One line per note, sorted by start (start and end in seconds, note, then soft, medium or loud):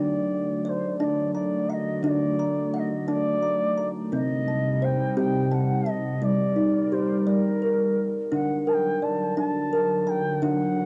0.00 1.99 D3 medium
0.00 4.08 D3 medium
0.00 4.08 F#3 medium
0.00 4.08 A3 medium
0.00 0.64 D4 medium
0.00 0.64 D5 medium
0.00 0.30 G5 medium
0.00 0.30 A#5 medium
0.64 0.70 D5 medium
0.64 1.69 D5 medium
0.69 0.98 C5 medium
0.99 1.69 D4 medium
0.99 1.05 D#5 medium
0.99 2.04 A5 medium
1.04 1.31 D5 medium
1.34 1.71 D5 medium
1.34 1.69 A#5 medium
1.69 2.04 D#5 medium
1.69 1.74 F#5 medium
1.69 2.38 A#5 medium
2.03 4.08 D3 medium
2.03 2.73 D4 medium
2.03 2.10 D#5 medium
2.09 2.77 D5 medium
2.39 3.41 A#5 medium
2.74 3.78 F#5 medium
2.74 2.80 F#5 medium
2.79 3.10 D#5 medium
3.08 3.78 D4 medium
3.08 3.86 D5 medium
3.08 4.12 A5 medium
3.42 3.76 A#5 medium
3.77 4.47 A#5 medium
4.11 6.19 C3 medium
4.11 6.18 C3 medium
4.11 6.19 G3 medium
4.11 4.82 C4 medium
4.11 6.19 D#4 medium
4.11 4.86 D#5 medium
4.48 5.50 A5 medium
4.82 5.87 C5 medium
4.82 5.18 G5 medium
5.17 5.87 C4 medium
5.17 6.22 G4 medium
5.17 5.55 G5 medium
5.51 5.91 F#5 medium
5.51 5.85 A5 medium
5.86 6.24 D#5 medium
5.86 6.56 A5 medium
6.22 6.92 G3 medium
6.22 8.30 G3 medium
6.22 8.29 A#4 medium
6.22 8.30 D5 medium
6.22 6.94 D5 medium
6.56 7.61 D#4 medium
6.92 7.97 G4 medium
6.92 7.20 C5 medium
7.20 7.30 C5 medium
7.27 7.97 G3 medium
7.27 8.06 A#4 medium
7.27 8.32 D5 medium
7.62 8.66 A#4 medium
8.30 10.86 D3 medium
8.30 10.38 D3 medium
8.30 10.86 F#3 medium
8.30 9.02 D4 medium
8.30 8.70 F#5 medium
8.67 9.72 A#4 medium
8.67 8.74 A5 medium
8.73 9.05 G5 medium
9.02 10.07 D5 medium
9.02 9.37 A5 medium
9.37 10.07 D4 medium
9.37 10.42 A5 medium
9.37 10.10 A5 medium
9.73 10.77 A#4 medium
10.07 10.44 G5 medium
10.07 10.86 A#5 medium
10.42 10.86 D3 medium
10.42 10.86 D4 medium
10.42 10.86 F#5 medium